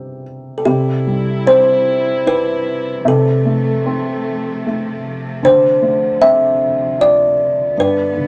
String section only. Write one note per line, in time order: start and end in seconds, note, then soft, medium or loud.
0.64 7.71 C3 medium
0.64 3.03 G3 medium
0.64 3.03 E4 medium
3.07 7.72 F3 medium
3.07 5.41 A3 medium
5.44 7.74 D2 medium
7.76 8.27 G2 medium
7.76 8.27 D3 medium
7.76 8.27 B3 medium